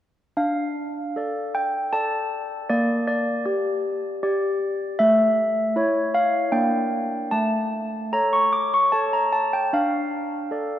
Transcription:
handbells
0.37 D4 F5
1.16 A4 D5
1.55 G5
1.93 A4 D5 A5
2.69 A#3 D5
3.08 D5
3.46 G4 D5
4.23 G4 D5
4.99 A3 E5
5.76 E4 C#5
6.14 F5
6.52 A#3 D4 D5 G5
7.31 A3 A5
8.13 A4 C#5 A#5
8.33 C#6
8.53 D6
8.74 C#6
8.92 A4 C#5 A5
9.13 A#5
9.33 A5
9.53 G5
9.73 D4 F5
10.51 A4 D5

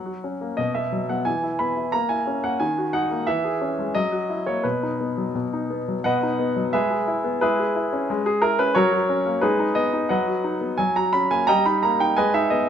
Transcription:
grand piano
Already playing: F#3 F#5
0.06 F#4
0.24 C#4
0.41 A#3
0.57 B2 D#5
0.74 B3 E5
0.92 F#3
1.09 B3 F#5
1.25 E3 G#5
1.43 E4
1.59 B3 B5
1.77 E4
1.92 A#3 A#5
2.09 E4 G#5
2.27 C#4
2.44 A#3 F#5
2.60 D#3 G#5
2.78 F#4
2.93 D#4 F#5
3.11 A#3
3.27 E3 E5
3.44 G#4
3.61 C#4
3.79 G#3
3.95 F#3 D#5
4.12 F#4
4.29 E4
4.46 A#3 C#5
4.63 B2 B4
4.83 D#4
5.01 B3
5.18 F#3
5.35 B2
5.53 D#4
5.70 B3
5.88 F#3
6.04 B2 B4 D#5 F#5
6.23 D#4
6.39 B3
6.56 F#3
6.73 G#3 G#4 B4 E5
6.91 G#4
7.08 E4
7.24 B3
7.41 G#3 E4 G#4 B4
7.59 G#4
7.76 E4
7.93 C#4
8.10 G#3
8.26 G#4
8.42 E4 A#4
8.59 C#4 B4
8.75 F#3 F#4 A#4 C#5
8.92 F#4
9.09 C#4
9.26 A#3
9.41 G#3 D#4 G#4 B4
9.59 D#4
9.75 B3 D#5
9.93 D#4
10.09 F#3 B4 D#5 F#5
10.27 F#4
10.44 D#4
10.61 B3
10.78 F#3 G#5
10.96 F#4 A#5
11.13 C#4 B5
11.31 A#3 G#5
11.47 G3 D#5 G5 A#5
11.66 D#4 B5
11.83 A#3 A#5
12.00 D#4 G5
12.17 G#3 B4 D#5 G#5
12.34 D#4 E5
12.50 B3 D#5

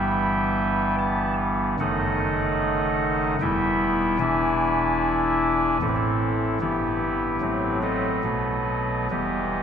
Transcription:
pipe organ
Already playing: G1 G2 E3 G3 B3 B4 E5 G5
0.99 A5
1.80 F#1 F#2 D#3 A3 D#4 A4 D#5 F#5
3.41 E1 E2 G3 B3 E4 B4 E5 G5
4.19 E1 E2 E3 D4 E4 D5 E5 G#5
5.81 A1 A2 E3 C4 E4 A4
5.88 B4
5.95 A4
6.61 G1 G2 E3 B3 E4 G4 B4
7.41 A1 A2 F#3 A3 C4
7.82 A4 B4 D#5
8.24 B1 B2 F#3 A3 B3
9.10 E1 E2 E3 G3 B3 G4 B4 D#5

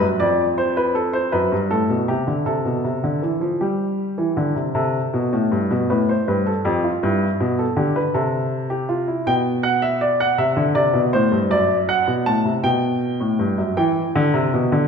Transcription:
grand piano
0.01 F#2
0.20 F2 D5
0.58 C5
0.77 B4
0.95 A4
1.13 C5
1.32 F#2 B4
1.52 G2
1.71 A2 A4
1.90 B2
2.08 C3 G4
2.27 D3
2.46 C3 A4
2.65 B2
2.84 C3
3.04 D3
3.22 E3
3.41 F3
3.61 G3 G4
4.18 E3
4.37 D3
4.56 C3
4.75 C3 A4
5.14 B2
5.33 A2
5.52 G2
5.71 B2
5.90 A2 B4
6.09 C5
6.28 G2 B4
6.46 A4
6.65 F2 G4
6.84 F4
7.03 G2 E4
7.40 B2
7.59 A4
7.77 D3 G4
7.96 B4
8.14 C3 A4
8.70 G4
8.89 F4
9.08 E4
9.27 B2 G5
9.63 F#5
9.82 E5
10.01 D5
10.20 F#5
10.38 C3 E5
10.57 D3
10.75 C3 D5
10.94 B2
11.13 A2 C5
11.32 G2
11.51 F#2 D5
11.89 F#5
12.07 B2
12.26 A2 A5
12.45 C3
12.64 B2 G5
13.20 A2
13.39 G2
13.58 F#2
13.77 E3 G5
14.16 D3
14.34 C3
14.54 B2
14.72 D3

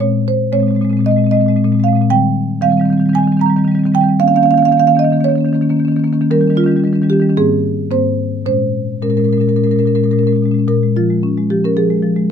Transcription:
marimba
0.00 A#2 G#3 C4 C#5
0.28 C5
0.52 A#2 G#3 C4 C#5
0.60 A#2 G#3 C4
0.67 A#2 G#3 C4
0.75 G#3 C4
0.81 A#2 G#3 C4
0.90 A#2 G#3 C4
0.97 A#2 G#3 C4
1.05 G#3 C4 D#5
1.09 A#2 C4
1.16 A#2 G#3 C4
1.24 A#2 G#3 C4
1.31 G#3 C4 D#5
1.36 A#2 G#3
1.41 C4
1.46 A#2 G#3 C4
1.55 A#2 G#3 C4
1.64 A#2 G#3 C4
1.72 A#2 G#3 C4
1.79 A#2 G#3 C4
1.84 C4 F5
1.88 G#3
1.92 A#2 C4
1.97 G#3
2.02 A#2 C4
2.10 D#3 G3 C4 G5
2.62 D#3 G3 C4 F5
2.70 D#3 G3 C4
2.77 D#3 G3 C4
2.86 G3 C4
2.90 D#3 C4
2.98 D#3 G3 C4
3.06 D#3 G3 C4
3.14 G3 C4 G#5
3.18 D#3
3.23 G3 C4
3.28 D#3
3.32 G3 C4
3.37 D#3 G3 C4
3.41 A#5
3.46 D#3 G3 C4
3.56 D#3 G3 C4
3.64 D#3 C4
3.68 G3 C4
3.75 D#3 G3
3.79 C4
3.84 D#3 G3 C4
3.92 D#3 G3 C4 G5
4.01 D#3 G3 C4
4.09 G3 C4
4.20 D#3 A#3 C#4 F5
4.27 D#3 A#3 C#4 F5
4.34 D#3 A#3 C#4 F5
4.42 D#3 A#3 C#4 F5
4.50 A#3 C#4 F5
4.54 D#3 C#4 F5
4.59 D#3 A#3
4.65 A#3 C#4 F5
4.72 D#3 C#4 F5
4.78 D#3 A#3 C#4 F5
4.87 D#3 A#3 C#4 F5
4.95 D#3 A#3 C#4 D#5
5.03 D#3 A#3 C#4
5.10 D#3 A#3 C#4
5.17 D#3 A#3 C#4
5.24 D#3 C#4 C#5
5.30 A#3 C#4
5.36 D#3 A#3
5.41 C#4
5.45 D#3 A#3 C#4
5.53 D#3 A#3 C#4
5.61 D#3 A#3 C#4
5.69 D#3 A#3 C#4
5.77 D#3 A#3 C#4
5.85 D#3 A#3 C#4
5.92 A#3 C#4
5.96 D#3 C#4
6.04 D#3 A#3 C#4
6.12 D#3 A#3 C#4
6.21 D#3 A#3 C#4
6.31 D#3 G3 C#4 A#4
6.39 D#3 G3 C#4
6.47 D#3 G3 C#4
6.55 D#3 C#4 F4
6.60 G3 C#4
6.66 D#3 G3
6.71 C#4
6.76 D#3 G3 C#4
6.84 D#3 G3 C#4
6.93 D#3 G3 C#4
7.02 D#3 G3 C#4
7.10 D#3 G3 C#4 G4
7.20 D#3 G3 C#4
7.30 D#3 C#4
7.37 G#2 A#3 C4 G#4
7.91 G#2 A#3 C4 C5
8.46 A#2 G#3 C#4 C5
9.02 A#2 G#3 C#4 A#4
9.10 A#2 G#3 C#4 A#4
9.17 A#2 G#3 C#4 A#4
9.24 G#3 C#4 A#4
9.29 A#2 C#4 A#4
9.33 G#3
9.38 A#2 G#3 C#4 A#4
9.48 A#2 G#3 C#4 A#4
9.56 A#2 G#3 C#4 A#4
9.64 A#2 G#3 C#4 A#4
9.71 G#3 C#4 A#4
9.76 A#2 G#3 C#4 A#4
9.86 A#2 G#3 C#4 A#4
9.95 A#2 G#3 C#4 A#4
10.03 A#2 G#3 C#4 A#4
10.11 A#2 G#3 C#4 A#4
10.18 G#3 C#4 A#4
10.23 A#2 C#4 A#4
10.28 G#3
10.33 A#2 G#3 C#4
10.42 A#2 G#3 C#4
10.51 A#2 G#3 C#4
10.59 C#4
10.68 A#2 A#4
10.83 G#3
10.96 F3 F4
11.10 G#3
11.23 C#4
11.37 G#3
11.50 F3 G4
11.64 C#4 A#4
11.77 F3 G#4
11.90 G#3
12.03 F3
12.16 G#3

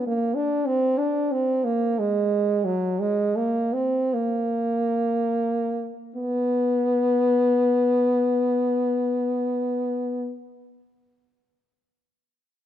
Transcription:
french horn
0.07 A#3
0.36 D4
0.66 C4
0.98 D4
1.32 C4
1.65 A#3
1.99 G#3
2.65 F#3
3.00 G#3
3.36 A#3
3.73 C4
4.14 A#3
6.16 B3

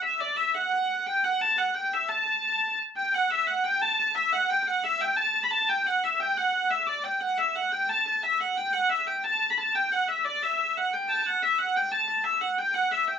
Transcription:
hurdy-gurdy
0.02 E5
0.20 D5
0.36 E5
0.55 F#5
0.72 F#5
1.06 G5
1.24 F#5
1.41 A5
1.58 F#5
1.74 G5
1.93 E5
2.09 A5
2.96 G5
3.14 F#5
3.30 E5
3.47 F#5
3.64 G5
3.81 A5
3.99 A5
4.15 E5
4.32 F#5
4.50 G5
4.62 G5
4.67 F#5
4.84 E5
5.01 G5
5.17 A5
5.43 B5
5.51 A5
5.69 G5
5.86 F#5
6.04 E5
6.20 G5
6.37 F#5
6.71 E5
6.83 D5 E5
7.04 G5
7.20 F#5
7.38 E5
7.55 F#5
7.72 G5
7.89 A5
8.05 A5
8.23 E5
8.40 F#5
8.57 G5
8.73 F#5
8.89 E5
9.07 G5
9.24 A5
9.50 B5
9.57 A5
9.75 G5
9.92 F#5
10.08 E5
10.24 D5
10.42 E5
10.77 F#5
10.93 G5
11.07 G5 A5
11.26 F#5
11.43 E5
11.59 F#5
11.76 G5
11.92 A5
12.08 A5
12.24 E5
12.41 F#5
12.58 G5
12.74 F#5
12.91 E5
13.08 G5

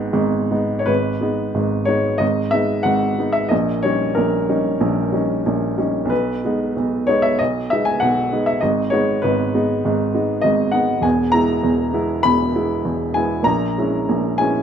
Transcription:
upright piano
Already playing: G#1 G#2 G#3 B3 D#4 G#4 G#5
0.13 G#1 G#2
0.51 G#3 B3 D#4
0.79 C#5
0.86 G#1 G#2 B4
1.21 G#3 B3 D#4
1.54 G#1 G#2
1.85 G#3 B3 D#4 C#5
2.18 G#1 G#2 D#5
2.51 G#3 B3 D#4 E5
2.83 G#1 G#2 F#5
3.19 G#3 B3 D#4
3.33 E5
3.49 A#1 A#2 D#5
3.83 G3 C#4 D#4 C#5
4.15 A#1 A#2 A#4
4.49 G3 C#4 D#4
4.80 A#1 A#2
5.12 G3 C#4 D#4
5.46 A#1 A#2
5.78 G3 C#4 D#4
6.05 B1
6.10 B2 B4
6.45 G#3 B3 D#4
6.76 B1 B2
7.07 G#3 B3 D#4 C#5
7.22 E5
7.39 B1 B2 D#5
7.70 G#3 B3 D#4 E5
7.85 G#5
8.00 B1 B2 F#5
8.32 G#3 B3 D#4
8.46 E5
8.61 G#1 G#2 D#5
8.90 G#3 B3 D#4 C#5
9.22 G#1 G#2 B4
9.54 G#3 B3 D#4
9.85 G#1 G#2
10.14 G#3 B3 D#4
10.41 G#1 G#2 D#5
10.72 G#3 B3 D#4 F#5
11.01 E1 E2 G#5
11.32 G#3 B3 E4 A#5
11.63 E1 E2
11.94 G#3 B3 E4
12.23 E1 E2 B5
12.56 G#3 B3 E4
12.85 E1 E2
13.14 G#3 B3 E4 G#5
13.42 A#1 A#2 A#5
13.78 G#3 C#4 E4
14.09 A#1 A#2
14.38 G#3 C#4 E4 G#5

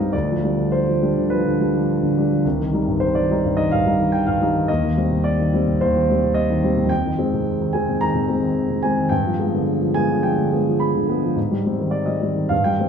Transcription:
grand piano
Already playing: G2 C4 D#4 C5 D5 D#5 F5 G5
0.00 G3
0.13 D2 D5
0.29 F3
0.43 G3 D4
0.58 D3
0.72 C5
0.88 F3
1.02 G3 D4
1.17 D3
1.30 F3 B4
1.45 D3
1.60 G3 D4
1.75 F3
2.03 D3
2.18 G3 D4
2.32 F3
2.45 C2
2.60 D#3
2.73 G3 D#4
2.88 G2
3.00 C5
3.15 D#3 D5
3.31 G3 D#4
3.45 G2
3.57 D#3 D#5
3.71 G2 F5
3.86 G3 D#4
4.00 D#3
4.12 G5
4.27 G2 F5
4.41 G3 D#4
4.55 D#3
4.68 D#2 D#5
4.83 D#3
4.97 G3 C4
5.11 C3
5.24 D5
5.39 D#3
5.54 G3 C4
5.67 C3
5.81 D#2 C5
5.95 D#3
6.10 G3 C4
6.23 C3
6.34 D#5
6.50 D#3
6.63 G3 C4
6.77 C3
6.84 F2
6.89 G5
7.05 D#3
7.19 G#3 C4
7.33 C3
7.61 D#3
7.73 G#3 C4 G#5
7.89 C3
8.01 D#3 A#5
8.14 C3
8.28 G#3 C4
8.42 D#3
8.70 C3
8.83 G#3 C4 G#5
8.97 D#3
9.09 G2 G5
9.26 F3
9.39 G#3 B3
9.53 D3
9.82 F3
9.94 G#3 B3 G#5
10.10 D3
10.23 F3 G5
10.38 D3
10.52 G#3 B3
10.67 F3
10.80 B5
10.95 D3
11.09 G#3 B3
11.23 F3
11.36 G#2
11.51 G3
11.66 G3 C4
11.79 D#3
11.91 D5
12.06 G3 D#5
12.21 G3 C4
12.36 D#3
12.49 G2 F5
12.64 G3 G5
12.80 G3 C4

